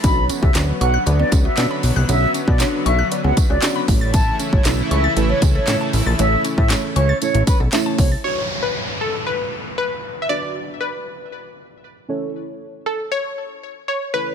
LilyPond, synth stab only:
\new Staff \with { instrumentName = "Synth stab" } { \time 4/4 \key b \minor \tempo 4 = 117 <cis' d' fis' b' cis''>4 <cis' d' fis' b' cis''>4 <d' fis' b' cis'' d''>4 <cis' d' fis' b' cis''>4 | <cis' d' fis' b' cis''>4 <cis' d' fis' b' cis''>4 <d' fis' b' cis'' d''>4 <cis' d' fis' b' cis''>8 <a cis' e' a' cis''>8~ | <a cis' e' a' cis''>8 r8 <a cis' e' a' cis''>4 <a cis' e' a' b'>4 <a cis' e' a' cis''>4 | <a cis' e' a' cis''>4 <a cis' e' a' cis''>4 <a cis' e' a' cis''>4 <a cis' e' a' cis''>4 |
<d' fis' b' cis''>1 | <d' fis' b' d''>2.~ <d' fis' b' d''>8 <cis' e' a' cis''>8~ | <cis' e' a' cis''>2.~ <cis' e' a' cis''>8 <cis' e' a' cis''>8 | }